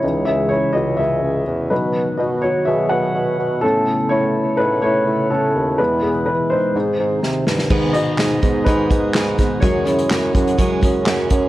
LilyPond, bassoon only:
\new Staff \with { instrumentName = "Bassoon" } { \clef bass \time 4/4 \key gis \phrygian \tempo 4 = 125 cis,8 cis,8. r16 cis,8 cis,8 cis,8 e,8 b,8~ | b,8 b,8. r16 b,8 b,8 b,8 b,8 a,8~ | a,8 a,8. r16 a,8 a,8 a,8 a,8 dis,8 | e,8 e,8. r8. gis,8 gis,8 bis,8 g,8 |
gis,4 gis,8 gis,8 gis,8 gis,8 gis,8 gis,8 | fis,4 fis,8 fis,8 fis,8 fis,8 fis,8 fis,8 | }